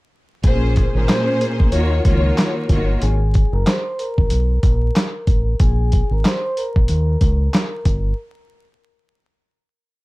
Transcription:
0.44 0.85 A#1 loud
0.44 0.91 A#2 medium
0.44 0.91 A#3 medium
0.44 0.92 C#4 medium
0.44 0.92 G#4 medium
0.44 0.92 C5 loud
0.44 0.92 G#5 medium
0.44 kick loud
0.44 closed hi-hat medium
0.76 kick medium
0.76 closed hi-hat medium
0.95 1.06 G#1 medium
0.95 1.73 A#2 medium
0.95 1.71 A#3 medium
0.95 1.73 C#4 medium
0.95 1.73 G#4 medium
0.95 1.08 A#4 medium
0.95 1.73 C5 loud
1.08 1.25 C5 medium
1.08 1.25 C6 medium
1.08 snare loud
1.08 clap medium
1.08 closed hi-hat medium
1.26 1.39 C5 medium
1.26 1.39 C6 medium
1.40 2.97 A#4 medium
1.40 2.98 A#5 medium
1.40 closed hi-hat medium
1.60 1.71 A#1 medium
1.60 kick medium
1.72 1.99 D#2 loud
1.72 2.03 D#3 medium
1.72 2.03 A#3 medium
1.72 2.03 F4 medium
1.72 2.03 F#4 medium
1.72 2.03 C#5 loud
1.72 closed hi-hat medium
2.05 2.31 C#2 loud
2.05 2.66 D#3 medium
2.05 2.66 A#3 medium
2.05 2.66 F4 medium
2.05 2.66 F#4 medium
2.05 2.66 C#5 loud
2.05 kick medium
2.05 closed hi-hat medium
2.38 snare loud
2.38 clap medium
2.38 closed hi-hat loud
2.69 2.96 G1 medium
2.69 3.01 D#3 medium
2.69 3.01 A#3 medium
2.69 3.01 F4 medium
2.69 3.01 F#4 medium
2.69 3.01 C#5 medium
2.69 kick medium
2.69 closed hi-hat medium
3.02 3.43 G#1 loud
3.02 3.49 G#4 medium
3.02 3.50 G#5 medium
3.02 closed hi-hat medium
3.34 kick medium
3.34 closed hi-hat medium
3.53 3.64 F#1 medium
3.53 3.65 A#4 medium
3.53 3.66 A#5 medium
3.66 3.83 C5 medium
3.66 3.83 C6 medium
3.66 snare loud
3.66 clap medium
3.66 closed hi-hat medium
3.85 3.97 C5 medium
3.85 3.98 C6 medium
3.99 5.56 A#4 medium
3.99 5.56 A#5 medium
3.99 closed hi-hat medium
4.18 4.29 G#1 medium
4.18 kick medium
4.30 4.57 B1 loud
4.30 closed hi-hat medium
4.63 4.89 A#1 medium
4.63 kick medium
4.63 closed hi-hat medium
4.96 snare loud
4.96 clap medium
4.96 closed hi-hat loud
5.27 5.54 A1 medium
5.27 kick medium
5.27 closed hi-hat medium
5.60 6.01 A#1 loud
5.60 6.07 G#4 medium
5.60 6.08 G#5 medium
5.60 kick loud
5.60 closed hi-hat medium
5.92 kick loud
5.92 closed hi-hat medium
6.11 6.22 G#1 medium
6.11 6.24 A#4 medium
6.11 6.24 A#5 medium
6.25 6.41 C5 medium
6.25 6.42 C6 medium
6.25 snare loud
6.25 clap medium
6.25 closed hi-hat medium
6.44 6.56 C5 medium
6.44 6.57 C6 medium
6.57 8.14 A#4 medium
6.57 8.15 A#5 medium
6.57 closed hi-hat medium
6.76 6.87 A#1 medium
6.76 kick medium
6.88 7.15 D#2 loud
6.88 closed hi-hat medium
7.21 7.47 C#2 loud
7.21 kick medium
7.21 closed hi-hat medium
7.54 snare loud
7.54 clap medium
7.54 closed hi-hat loud
7.85 8.12 G1 medium
7.85 kick medium
7.85 closed hi-hat medium

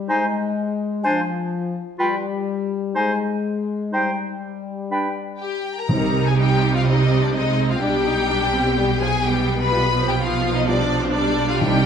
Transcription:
0.09 1.05 G#3 medium
0.09 0.26 D#4 medium
0.09 0.25 C5 medium
0.09 0.31 G#5 medium
1.04 1.83 F3 medium
1.04 1.21 D4 medium
1.04 1.21 C5 medium
1.04 1.26 G#5 medium
1.99 2.94 G3 medium
1.99 2.16 F4 medium
1.99 2.16 B4 medium
1.99 2.22 G5 medium
2.95 3.92 G#3 medium
2.95 3.12 D#4 soft
2.95 3.12 C5 medium
2.95 3.18 G#5 medium
3.93 5.66 G3 soft
3.93 4.10 D#4 medium
3.93 4.10 C5 soft
3.93 4.16 G5 soft
4.91 5.08 D4 soft
4.91 5.09 B4 soft
4.91 5.15 G5 soft
5.40 5.75 G4 medium
5.40 5.75 G5 medium
5.77 6.24 A#4 medium
5.77 6.26 A#5 medium
5.89 7.78 C2 medium
5.89 6.57 C3 medium
5.89 7.77 C3 soft
5.89 6.34 G3 soft
5.89 6.06 C4 soft
5.89 6.06 D#4 soft
5.89 6.82 D#4 medium
6.25 6.37 G#4 medium
6.25 6.38 G#5 medium
6.36 7.32 G3 medium
6.36 6.73 G4 medium
6.36 6.74 G5 medium
6.74 6.86 F4 medium
6.74 6.87 F5 medium
6.85 7.02 C4 soft
6.85 7.33 C4 soft
6.85 7.02 D#4 medium
6.85 7.22 D#4 medium
6.85 7.22 D#5 medium
7.21 7.34 D4 soft
7.21 7.35 D5 medium
7.33 7.81 G#3 soft
7.33 7.81 C4 medium
7.33 7.69 D#4 medium
7.33 7.69 D#5 medium
7.70 7.81 F4 medium
7.70 7.81 F5 medium
7.81 11.58 B1 medium
7.81 11.58 B2 medium
7.81 7.98 G3 soft
7.81 8.75 G3 medium
7.81 7.98 D4 medium
7.81 8.05 D4 medium
7.81 8.98 G4 medium
7.81 9.01 G5 medium
8.05 8.29 D#4 soft
8.29 8.53 D4 medium
8.54 8.77 C4 soft
8.77 8.85 G3 soft
8.77 8.94 G3 medium
8.77 9.24 B3 soft
8.77 8.93 D4 soft
9.01 9.09 F3 medium
9.01 9.25 G#4 medium
9.01 9.25 G#5 medium
9.25 9.71 G3 soft
9.25 10.64 B3 medium
9.25 9.61 G4 medium
9.25 9.61 G5 medium
9.59 10.07 B4 medium
9.59 10.08 B5 medium
9.72 9.89 G3 medium
9.72 9.80 G3 medium
9.72 9.89 F4 medium
9.96 10.18 F3 medium
10.07 10.12 G4 medium
10.07 10.21 G5 medium
10.20 11.13 F3 medium
10.20 10.54 F4 medium
10.20 10.55 F5 medium
10.55 10.67 D#4 medium
10.55 10.68 D#5 medium
10.66 10.83 G3 medium
10.66 11.86 D4 medium
10.66 11.03 D4 medium
10.66 10.83 F4 medium
10.66 11.02 D5 medium
11.02 11.07 C4 medium
11.02 11.15 C5 medium
11.14 11.61 G3 medium
11.14 11.49 D4 medium
11.14 11.50 D5 medium
11.49 11.61 F4 medium
11.49 11.62 F5 medium
11.60 11.86 C2 medium
11.60 11.86 C3 medium
11.60 11.86 G3 medium
11.60 11.79 G3 medium
11.60 11.79 D#4 medium
11.60 11.86 G4 medium
11.60 11.86 G5 medium

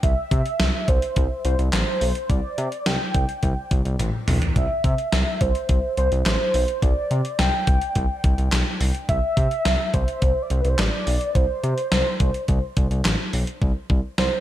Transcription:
0.03 0.14 C2 loud
0.03 0.90 E5 loud
0.03 kick loud
0.03 closed hi-hat medium
0.31 0.42 C3 loud
0.31 kick medium
0.31 closed hi-hat medium
0.46 closed hi-hat medium
0.60 0.70 C2 loud
0.60 snare loud
0.60 closed hi-hat medium
0.88 0.99 C2 loud
0.88 1.44 C5 medium
0.88 kick loud
0.88 closed hi-hat medium
1.02 closed hi-hat medium
1.16 1.27 C2 loud
1.16 kick medium
1.16 closed hi-hat medium
1.45 1.55 C2 loud
1.45 1.57 C5 medium
1.45 closed hi-hat medium
1.59 1.69 C2 loud
1.59 closed hi-hat soft
1.73 1.84 A1 loud
1.73 2.31 C5 loud
1.73 snare loud
1.73 clap medium
1.73 closed hi-hat medium
2.01 2.12 B1 loud
2.01 open hi-hat medium
2.15 closed hi-hat medium
2.30 2.40 C2 loud
2.30 2.88 D5 loud
2.30 kick loud
2.30 closed hi-hat medium
2.58 2.69 C3 loud
2.58 closed hi-hat medium
2.72 closed hi-hat medium
2.86 2.97 C2 loud
2.86 3.71 G5 loud
2.86 snare loud
2.86 closed hi-hat medium
3.14 3.25 C2 loud
3.14 kick loud
3.14 closed hi-hat medium
3.29 closed hi-hat medium
3.43 3.54 C2 loud
3.43 kick medium
3.43 closed hi-hat medium
3.71 3.82 C2 loud
3.71 kick medium
3.71 closed hi-hat medium
3.85 3.96 C2 loud
3.85 closed hi-hat medium
3.99 4.10 A1 loud
3.99 closed hi-hat medium
3.99 high tom medium
4.28 4.38 B1 loud
4.28 mid tom loud
4.28 open hi-hat medium
4.42 closed hi-hat medium
4.42 floor tom loud
4.56 4.67 C2 loud
4.56 5.43 E5 loud
4.56 kick loud
4.56 closed hi-hat medium
4.84 4.95 C3 loud
4.84 kick medium
4.84 closed hi-hat medium
4.98 closed hi-hat medium
5.12 5.23 C2 loud
5.12 snare loud
5.12 closed hi-hat medium
5.41 5.52 C2 loud
5.41 5.97 C5 medium
5.41 kick loud
5.41 closed hi-hat medium
5.55 closed hi-hat medium
5.69 5.80 C2 loud
5.69 kick medium
5.69 closed hi-hat medium
5.97 6.08 C2 loud
5.97 6.10 C5 medium
5.97 closed hi-hat medium
6.12 6.22 C2 loud
6.12 closed hi-hat soft
6.26 6.37 A1 loud
6.26 6.84 C5 loud
6.26 snare loud
6.26 clap medium
6.26 closed hi-hat medium
6.54 6.65 B1 loud
6.54 open hi-hat medium
6.68 closed hi-hat medium
6.82 6.93 C2 loud
6.82 7.39 D5 loud
6.82 kick loud
6.82 closed hi-hat medium
7.11 7.21 C3 loud
7.11 closed hi-hat medium
7.25 closed hi-hat medium
7.39 7.50 C2 loud
7.39 8.20 G5 loud
7.39 snare loud
7.39 closed hi-hat medium
7.67 7.78 C2 loud
7.67 kick loud
7.67 closed hi-hat medium
7.82 closed hi-hat medium
7.95 8.06 C2 loud
7.95 kick medium
7.95 closed hi-hat medium
8.24 8.35 C2 loud
8.24 kick medium
8.24 closed hi-hat medium
8.38 8.49 C2 loud
8.38 closed hi-hat medium
8.52 8.63 B1 loud
8.52 snare loud
8.52 clap loud
8.52 closed hi-hat medium
8.81 8.91 C2 loud
8.81 open hi-hat medium
8.95 closed hi-hat medium
9.09 9.20 C2 loud
9.09 9.95 E5 loud
9.09 kick loud
9.09 closed hi-hat medium
9.37 9.48 C3 loud
9.37 kick medium
9.37 closed hi-hat medium
9.51 closed hi-hat medium
9.65 9.76 C2 loud
9.65 snare loud
9.65 closed hi-hat medium
9.94 10.04 C2 loud
9.94 10.44 C5 loud
9.94 kick loud
9.94 closed hi-hat medium
10.08 closed hi-hat medium
10.22 10.33 C2 loud
10.22 kick medium
10.22 closed hi-hat medium
10.42 10.53 D5 medium
10.50 10.61 C2 loud
10.50 10.62 C5 medium
10.50 closed hi-hat medium
10.61 10.75 C2 loud
10.61 10.71 B4 medium
10.65 closed hi-hat medium
10.70 10.80 C5 medium
10.79 10.89 A1 loud
10.79 11.37 D5 loud
10.79 snare loud
10.79 clap medium
10.79 closed hi-hat medium
11.07 11.18 B1 loud
11.07 open hi-hat medium
11.21 closed hi-hat medium
11.35 11.46 C2 loud
11.35 13.05 C5 loud
11.35 kick loud
11.35 closed hi-hat medium
11.63 11.74 C3 loud
11.63 closed hi-hat medium
11.78 closed hi-hat medium
11.92 12.03 C2 loud
11.92 snare loud
11.92 closed hi-hat medium
12.20 12.31 C2 loud
12.20 kick loud
12.20 closed hi-hat medium
12.34 closed hi-hat medium
12.48 12.59 C2 loud
12.48 kick medium
12.48 closed hi-hat medium
12.77 12.88 C2 loud
12.77 kick loud
12.77 closed hi-hat medium
12.91 13.02 C2 loud
12.91 closed hi-hat medium
13.05 13.16 A1 medium
13.05 snare loud
13.05 clap loud
13.05 closed hi-hat medium
13.33 13.44 B1 medium
13.33 open hi-hat medium
13.47 closed hi-hat medium
13.62 13.72 C2 loud
13.62 kick loud
13.90 14.01 C2 medium
13.90 kick medium
14.18 14.29 C2 loud
14.18 14.40 C5 loud
14.18 snare loud

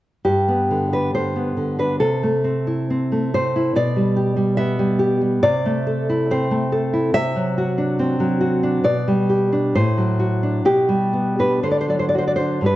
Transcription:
0.25 1.96 G2 medium
0.25 0.89 G4 medium
0.48 1.34 B3 soft
0.71 1.13 D3 soft
0.92 1.77 D4 soft
0.92 1.14 B4 medium
1.14 1.56 D3 soft
1.14 1.76 C5 medium
1.36 2.00 B3 soft
1.57 2.00 D3 soft
1.79 2.00 D4 soft
1.79 2.00 B4 medium
2.00 3.72 C3 medium
2.00 3.29 A4 medium
2.23 3.11 A3 soft
2.44 2.89 C4 soft
2.67 3.55 E4 soft
2.90 3.33 C4 soft
3.12 3.76 A3 soft
3.34 3.76 C4 soft
3.34 3.75 C5 medium
3.56 3.76 E4 soft
3.76 5.38 B2 medium
3.76 4.55 D5 medium
3.96 4.35 G3 soft
4.16 4.98 G4 soft
4.36 4.78 G3 soft
4.57 5.42 B3 soft
4.57 5.39 E5 medium
4.79 5.20 G3 soft
4.99 5.42 G4 soft
5.21 5.43 G3 soft
5.43 7.10 C3 medium
5.43 6.26 D5 medium
5.66 6.50 A3 medium
5.87 6.71 A4 medium
6.09 6.92 E4 medium
6.31 7.15 C4 soft
6.31 6.71 C5 medium
6.51 7.14 A3 soft
6.72 7.14 A4 medium
6.93 7.14 E4 medium
7.14 8.81 C3 medium
7.14 8.81 E5 loud
7.36 8.19 F#3 soft
7.58 8.39 F#4 medium
7.78 8.62 D4 medium
7.99 8.85 C4 medium
8.20 8.85 F#3 soft
8.41 8.85 F#4 medium
8.63 8.85 D4 soft
8.84 9.71 B2 medium
8.84 9.71 D5 medium
9.08 9.75 G3 soft
9.29 9.74 G4 soft
9.52 9.75 D4 medium
9.75 10.62 A2 medium
9.75 10.61 C5 medium
9.97 10.65 F#3 soft
10.19 10.65 F#4 soft
10.43 10.65 D4 soft
10.65 11.60 B2 medium
10.65 11.35 G4 medium
10.89 11.63 G3 soft
11.13 11.63 B3 soft
11.39 11.64 D4 soft
11.39 11.63 B4 medium
11.63 12.63 D3 medium
11.63 11.71 C5 medium
11.71 11.80 D5 medium
11.81 11.89 C5 medium
11.88 12.66 F#3 soft
11.88 11.99 D5 medium
11.99 12.08 C5 medium
12.09 12.18 D5 medium
12.15 12.64 F#4 soft
12.15 12.27 C5 medium
12.28 12.35 D5 medium
12.36 12.65 C5 medium
12.40 12.62 D4 soft
12.61 12.76 G2 soft
12.61 12.76 G3 soft
12.61 12.76 D4 soft
12.66 12.76 B4 medium

